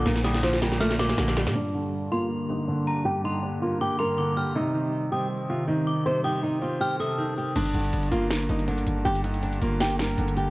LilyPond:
<<
  \new Staff \with { instrumentName = "Synth bell" } { \time 4/4 \key g \minor \tempo 4 = 160 r8 ees'''8 r4 f'''8 d'''4. | r4. c'''2 bes''8 | r8 c'''8 r4 d'''8 c'''8 d'''8 f'''8 | r4. ees'''2 d'''8 |
r8 ees'''8 r4 f'''8 ees'''4. | r1 | r1 | }
  \new Staff \with { instrumentName = "Nylon-string guitar" } { \time 4/4 \key g \minor bes8 g8 f8 g8 a8 bes4 g8 | d'4. f'8 r8 ees'8 d'4 | g'8 ees'8 d'8 f'8 g'8 bes'4 g'8 | ees'4. g'8 r8 f'8 ees'4 |
c''8 g'8 ees'8 f'8 g'8 a'4 g'8 | d'4. f'8 r8 ees'8 d'4 | g'8 ees'8 d'8 f'8 g'8 bes'4 g'8 | }
  \new Staff \with { instrumentName = "Analog synth pad" } { \clef bass \time 4/4 \key g \minor << { <f f'>1 | <g g'>1~ | <g g'>1~ | <g g'>1~ |
<g g'>1 | r1 | r1 | } \\ { <d bes>1 | <d bes>1~ | <d bes>1 | <ees c'>1~ |
<ees c'>1 | r1 | r1 | } >> }
  \new Staff \with { instrumentName = "Grand piano" } { \clef bass \time 4/4 \key g \minor <bes, d>8 d4 bes4 bes,8 d4 | g,8 d4 bes4 g,8 d4 | g,8 d4 bes4 g,8 d4 | c8 ees4 c'4 c8 ees4 |
c8 ees4 c'4 c8 ees4 | g,8 d4 bes4 g,8 d4 | g,8 d4 bes4 g,8 d4 | }
  \new Staff \with { instrumentName = "808-style bass" } { \clef bass \time 4/4 \key g \minor bes,,2. bes,,8. bes,16 | r1 | r1 | r1 |
r1 | g,,8 g,,8 g,,8 g,,4 g,,4 g,,8 | g,,4. g,,4. g,,4 | }
  \new DrumStaff \with { instrumentName = "Drums" } \drummode { \time 4/4 <hh sn>16 <hh sn>16 <hh sn>16 <hh sn>16 <hh sn>16 <hh sn>16 <hho sn>16 sn16 <hh sn>16 <hh sn>16 <hh sn>16 <hh sn>16 <hh sn>16 <hh sn>16 <hh sn>16 sn16 | r4 r4 r4 r4 | r4 r4 r4 r4 | r4 r4 r4 r4 |
r4 r4 r4 r4 | <cymc hh>16 hh16 hh16 hh16 hh16 hh16 hh8 <hh sn>16 hh16 hh16 hh16 hh16 hh16 hh8 | hh16 hh16 hh16 hh16 hh16 hh16 hh8 <hh sn>16 hh16 <hh sn>16 hh16 hh16 hh16 hh8 | }
>>